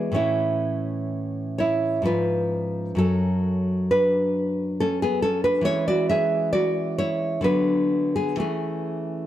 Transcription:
0, 0, Header, 1, 2, 480
1, 0, Start_track
1, 0, Key_signature, 3, "major"
1, 0, Tempo, 974026
1, 75, Time_signature, 3, 2, 24, 8
1, 552, Tempo, 928793
1, 1992, Tempo, 875912
1, 3432, Tempo, 910470
1, 3912, Tempo, 961538
1, 4392, Tempo, 1022147
1, 4796, End_track
2, 0, Start_track
2, 0, Title_t, "Nylon-string guitar"
2, 0, Program_c, 0, 24
2, 0, Note_on_c, 0, 52, 80
2, 0, Note_on_c, 0, 56, 63
2, 0, Note_on_c, 0, 59, 62
2, 0, Note_on_c, 0, 68, 63
2, 0, Note_on_c, 0, 74, 88
2, 55, Note_off_c, 0, 56, 0
2, 57, Note_off_c, 0, 52, 0
2, 57, Note_on_c, 0, 45, 64
2, 63, Note_on_c, 0, 52, 51
2, 65, Note_off_c, 0, 74, 0
2, 69, Note_on_c, 0, 61, 53
2, 70, Note_off_c, 0, 59, 0
2, 72, Note_on_c, 0, 73, 92
2, 76, Note_off_c, 0, 68, 0
2, 78, Note_on_c, 0, 64, 74
2, 773, Note_off_c, 0, 73, 0
2, 776, Note_off_c, 0, 64, 0
2, 792, Note_on_c, 0, 73, 93
2, 800, Note_on_c, 0, 64, 72
2, 1007, Note_off_c, 0, 45, 0
2, 1010, Note_off_c, 0, 52, 0
2, 1013, Note_off_c, 0, 61, 0
2, 1016, Note_on_c, 0, 44, 62
2, 1023, Note_off_c, 0, 64, 0
2, 1023, Note_on_c, 0, 53, 51
2, 1026, Note_off_c, 0, 73, 0
2, 1029, Note_on_c, 0, 61, 54
2, 1035, Note_on_c, 0, 71, 96
2, 1040, Note_on_c, 0, 65, 72
2, 1490, Note_off_c, 0, 44, 0
2, 1493, Note_off_c, 0, 53, 0
2, 1495, Note_off_c, 0, 71, 0
2, 1496, Note_off_c, 0, 61, 0
2, 1496, Note_off_c, 0, 65, 0
2, 1497, Note_on_c, 0, 42, 64
2, 1505, Note_on_c, 0, 54, 60
2, 1516, Note_on_c, 0, 69, 94
2, 1521, Note_on_c, 0, 61, 75
2, 1973, Note_off_c, 0, 69, 0
2, 1975, Note_off_c, 0, 61, 0
2, 1993, Note_on_c, 0, 71, 95
2, 1999, Note_on_c, 0, 62, 67
2, 2466, Note_off_c, 0, 62, 0
2, 2466, Note_off_c, 0, 71, 0
2, 2484, Note_on_c, 0, 69, 102
2, 2489, Note_on_c, 0, 61, 77
2, 2596, Note_off_c, 0, 61, 0
2, 2601, Note_off_c, 0, 69, 0
2, 2604, Note_on_c, 0, 68, 95
2, 2610, Note_on_c, 0, 59, 75
2, 2712, Note_off_c, 0, 68, 0
2, 2714, Note_on_c, 0, 69, 101
2, 2715, Note_off_c, 0, 59, 0
2, 2722, Note_on_c, 0, 61, 77
2, 2828, Note_off_c, 0, 61, 0
2, 2830, Note_off_c, 0, 69, 0
2, 2832, Note_on_c, 0, 71, 100
2, 2840, Note_on_c, 0, 62, 82
2, 2920, Note_off_c, 0, 42, 0
2, 2924, Note_off_c, 0, 54, 0
2, 2927, Note_on_c, 0, 52, 82
2, 2934, Note_on_c, 0, 56, 63
2, 2943, Note_off_c, 0, 62, 0
2, 2945, Note_off_c, 0, 71, 0
2, 2945, Note_on_c, 0, 61, 68
2, 2948, Note_on_c, 0, 73, 126
2, 2955, Note_on_c, 0, 64, 89
2, 3063, Note_off_c, 0, 64, 0
2, 3067, Note_off_c, 0, 73, 0
2, 3071, Note_on_c, 0, 74, 110
2, 3080, Note_on_c, 0, 66, 85
2, 3185, Note_off_c, 0, 66, 0
2, 3189, Note_off_c, 0, 74, 0
2, 3191, Note_on_c, 0, 76, 107
2, 3196, Note_on_c, 0, 68, 93
2, 3419, Note_off_c, 0, 68, 0
2, 3423, Note_off_c, 0, 76, 0
2, 3427, Note_on_c, 0, 74, 106
2, 3436, Note_on_c, 0, 66, 77
2, 3656, Note_off_c, 0, 66, 0
2, 3658, Note_off_c, 0, 74, 0
2, 3669, Note_on_c, 0, 73, 106
2, 3674, Note_on_c, 0, 64, 83
2, 3878, Note_off_c, 0, 52, 0
2, 3882, Note_off_c, 0, 56, 0
2, 3887, Note_off_c, 0, 61, 0
2, 3893, Note_on_c, 0, 50, 67
2, 3897, Note_off_c, 0, 64, 0
2, 3899, Note_on_c, 0, 54, 59
2, 3901, Note_off_c, 0, 73, 0
2, 3907, Note_on_c, 0, 59, 54
2, 3911, Note_on_c, 0, 71, 100
2, 3916, Note_on_c, 0, 62, 73
2, 4249, Note_off_c, 0, 62, 0
2, 4252, Note_off_c, 0, 71, 0
2, 4266, Note_off_c, 0, 59, 0
2, 4267, Note_on_c, 0, 68, 86
2, 4272, Note_on_c, 0, 59, 67
2, 4367, Note_off_c, 0, 50, 0
2, 4370, Note_off_c, 0, 54, 0
2, 4372, Note_on_c, 0, 52, 64
2, 4381, Note_on_c, 0, 57, 51
2, 4382, Note_off_c, 0, 68, 0
2, 4385, Note_off_c, 0, 59, 0
2, 4388, Note_on_c, 0, 68, 80
2, 4395, Note_on_c, 0, 61, 62
2, 4796, Note_off_c, 0, 52, 0
2, 4796, Note_off_c, 0, 57, 0
2, 4796, Note_off_c, 0, 61, 0
2, 4796, Note_off_c, 0, 68, 0
2, 4796, End_track
0, 0, End_of_file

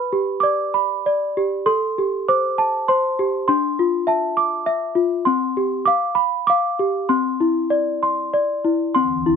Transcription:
0, 0, Header, 1, 3, 480
1, 0, Start_track
1, 0, Key_signature, 0, "major"
1, 0, Tempo, 613497
1, 1300, Time_signature, 3, 2, 24, 8
1, 1776, Tempo, 598802
1, 4656, Tempo, 614754
1, 7387, End_track
2, 0, Start_track
2, 0, Title_t, "Celesta"
2, 0, Program_c, 0, 8
2, 0, Note_on_c, 0, 71, 74
2, 0, Note_on_c, 0, 83, 74
2, 98, Note_on_c, 0, 67, 64
2, 288, Note_off_c, 0, 83, 0
2, 315, Note_on_c, 0, 86, 70
2, 339, Note_on_c, 0, 74, 68
2, 579, Note_on_c, 0, 83, 67
2, 821, Note_off_c, 0, 71, 0
2, 821, Note_off_c, 0, 74, 0
2, 830, Note_on_c, 0, 74, 68
2, 1019, Note_off_c, 0, 86, 0
2, 1061, Note_off_c, 0, 67, 0
2, 1073, Note_on_c, 0, 67, 60
2, 1299, Note_on_c, 0, 69, 75
2, 1299, Note_on_c, 0, 84, 75
2, 1303, Note_off_c, 0, 83, 0
2, 1307, Note_off_c, 0, 67, 0
2, 1307, Note_off_c, 0, 74, 0
2, 1551, Note_on_c, 0, 67, 60
2, 1788, Note_on_c, 0, 72, 66
2, 1788, Note_on_c, 0, 86, 80
2, 1790, Note_off_c, 0, 84, 0
2, 2027, Note_on_c, 0, 81, 72
2, 2258, Note_off_c, 0, 69, 0
2, 2262, Note_off_c, 0, 72, 0
2, 2268, Note_on_c, 0, 84, 81
2, 2272, Note_on_c, 0, 72, 71
2, 2280, Note_off_c, 0, 86, 0
2, 2506, Note_off_c, 0, 67, 0
2, 2515, Note_on_c, 0, 67, 64
2, 2735, Note_off_c, 0, 84, 0
2, 2744, Note_off_c, 0, 81, 0
2, 2744, Note_on_c, 0, 84, 84
2, 2746, Note_off_c, 0, 72, 0
2, 2747, Note_off_c, 0, 67, 0
2, 2751, Note_on_c, 0, 62, 73
2, 2996, Note_on_c, 0, 65, 66
2, 3186, Note_off_c, 0, 84, 0
2, 3219, Note_on_c, 0, 76, 71
2, 3227, Note_on_c, 0, 81, 62
2, 3459, Note_on_c, 0, 86, 73
2, 3685, Note_off_c, 0, 76, 0
2, 3695, Note_on_c, 0, 76, 72
2, 3698, Note_off_c, 0, 62, 0
2, 3905, Note_off_c, 0, 81, 0
2, 3917, Note_off_c, 0, 65, 0
2, 3927, Note_on_c, 0, 65, 64
2, 4167, Note_on_c, 0, 84, 83
2, 4169, Note_off_c, 0, 65, 0
2, 4173, Note_off_c, 0, 76, 0
2, 4174, Note_off_c, 0, 86, 0
2, 4178, Note_on_c, 0, 60, 76
2, 4421, Note_on_c, 0, 67, 62
2, 4621, Note_off_c, 0, 84, 0
2, 4650, Note_on_c, 0, 86, 86
2, 4658, Note_off_c, 0, 60, 0
2, 4659, Note_off_c, 0, 67, 0
2, 4665, Note_on_c, 0, 77, 74
2, 4881, Note_on_c, 0, 83, 78
2, 4897, Note_off_c, 0, 86, 0
2, 5130, Note_on_c, 0, 86, 89
2, 5132, Note_off_c, 0, 83, 0
2, 5143, Note_off_c, 0, 77, 0
2, 5152, Note_on_c, 0, 77, 77
2, 5383, Note_on_c, 0, 67, 65
2, 5614, Note_on_c, 0, 84, 76
2, 5615, Note_off_c, 0, 67, 0
2, 5616, Note_on_c, 0, 60, 76
2, 5618, Note_off_c, 0, 77, 0
2, 5622, Note_off_c, 0, 86, 0
2, 5860, Note_on_c, 0, 64, 66
2, 6093, Note_on_c, 0, 74, 70
2, 6336, Note_off_c, 0, 84, 0
2, 6346, Note_on_c, 0, 84, 69
2, 6574, Note_off_c, 0, 60, 0
2, 6577, Note_off_c, 0, 74, 0
2, 6586, Note_on_c, 0, 74, 66
2, 6821, Note_off_c, 0, 64, 0
2, 6829, Note_on_c, 0, 64, 58
2, 7053, Note_off_c, 0, 84, 0
2, 7063, Note_off_c, 0, 64, 0
2, 7063, Note_on_c, 0, 84, 82
2, 7064, Note_off_c, 0, 74, 0
2, 7073, Note_on_c, 0, 60, 73
2, 7311, Note_on_c, 0, 64, 64
2, 7387, Note_off_c, 0, 60, 0
2, 7387, Note_off_c, 0, 64, 0
2, 7387, Note_off_c, 0, 84, 0
2, 7387, End_track
3, 0, Start_track
3, 0, Title_t, "Ambient pad"
3, 0, Program_c, 1, 92
3, 7059, Note_on_c, 1, 52, 67
3, 7061, Note_on_c, 1, 50, 76
3, 7063, Note_on_c, 1, 60, 75
3, 7387, Note_off_c, 1, 50, 0
3, 7387, Note_off_c, 1, 52, 0
3, 7387, Note_off_c, 1, 60, 0
3, 7387, End_track
0, 0, End_of_file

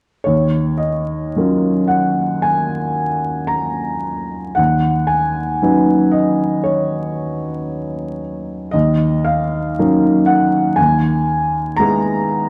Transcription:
0, 0, Header, 1, 2, 480
1, 0, Start_track
1, 0, Key_signature, -6, "minor"
1, 0, Tempo, 1107011
1, 108, Time_signature, 4, 2, 24, 8
1, 1069, Tempo, 1056338
1, 2509, Tempo, 1034483
1, 4429, Tempo, 1010101
1, 5721, End_track
2, 0, Start_track
2, 0, Title_t, "Grand piano"
2, 0, Program_c, 0, 0
2, 104, Note_on_c, 0, 73, 52
2, 115, Note_on_c, 0, 39, 33
2, 201, Control_c, 0, 64, 127
2, 336, Note_on_c, 0, 75, 44
2, 346, Note_off_c, 0, 73, 0
2, 579, Note_off_c, 0, 39, 0
2, 591, Note_on_c, 0, 54, 25
2, 594, Note_on_c, 0, 61, 25
2, 595, Note_on_c, 0, 65, 25
2, 598, Note_on_c, 0, 70, 26
2, 813, Note_on_c, 0, 78, 50
2, 825, Note_off_c, 0, 75, 0
2, 1050, Note_on_c, 0, 80, 54
2, 1060, Note_off_c, 0, 78, 0
2, 1526, Note_on_c, 0, 82, 56
2, 1543, Note_off_c, 0, 80, 0
2, 2012, Note_off_c, 0, 54, 0
2, 2014, Note_off_c, 0, 61, 0
2, 2014, Note_off_c, 0, 65, 0
2, 2016, Note_off_c, 0, 70, 0
2, 2016, Note_on_c, 0, 78, 57
2, 2017, Note_off_c, 0, 82, 0
2, 2026, Note_on_c, 0, 39, 32
2, 2038, Control_c, 0, 64, 0
2, 2114, Control_c, 0, 64, 127
2, 2252, Note_on_c, 0, 80, 55
2, 2262, Note_off_c, 0, 78, 0
2, 2491, Note_off_c, 0, 39, 0
2, 2504, Note_on_c, 0, 54, 26
2, 2505, Note_on_c, 0, 71, 28
2, 2506, Note_on_c, 0, 61, 25
2, 2506, Note_on_c, 0, 63, 26
2, 2732, Note_on_c, 0, 75, 53
2, 2741, Note_off_c, 0, 80, 0
2, 2974, Note_on_c, 0, 73, 46
2, 2979, Note_off_c, 0, 75, 0
2, 3700, Note_off_c, 0, 73, 0
2, 3928, Note_off_c, 0, 54, 0
2, 3929, Note_off_c, 0, 61, 0
2, 3929, Note_off_c, 0, 63, 0
2, 3929, Note_off_c, 0, 71, 0
2, 3937, Note_on_c, 0, 75, 59
2, 3948, Note_on_c, 0, 39, 40
2, 3956, Control_c, 0, 64, 0
2, 4032, Control_c, 0, 64, 127
2, 4185, Note_off_c, 0, 75, 0
2, 4185, Note_on_c, 0, 77, 58
2, 4413, Note_off_c, 0, 39, 0
2, 4438, Note_on_c, 0, 54, 31
2, 4439, Note_on_c, 0, 61, 26
2, 4440, Note_on_c, 0, 63, 29
2, 4440, Note_on_c, 0, 70, 30
2, 4661, Note_on_c, 0, 78, 57
2, 4662, Note_off_c, 0, 77, 0
2, 4890, Note_off_c, 0, 54, 0
2, 4891, Note_off_c, 0, 61, 0
2, 4891, Note_off_c, 0, 63, 0
2, 4891, Note_off_c, 0, 70, 0
2, 4898, Note_on_c, 0, 80, 58
2, 4902, Note_off_c, 0, 78, 0
2, 4911, Note_on_c, 0, 39, 37
2, 4913, Control_c, 0, 64, 0
2, 4996, Control_c, 0, 64, 127
2, 5370, Note_off_c, 0, 39, 0
2, 5376, Note_on_c, 0, 82, 75
2, 5378, Note_off_c, 0, 80, 0
2, 5389, Note_on_c, 0, 56, 30
2, 5391, Note_on_c, 0, 59, 29
2, 5393, Note_on_c, 0, 64, 30
2, 5394, Note_on_c, 0, 68, 34
2, 5721, Note_off_c, 0, 56, 0
2, 5721, Note_off_c, 0, 59, 0
2, 5721, Note_off_c, 0, 64, 0
2, 5721, Note_off_c, 0, 68, 0
2, 5721, Note_off_c, 0, 82, 0
2, 5721, End_track
0, 0, End_of_file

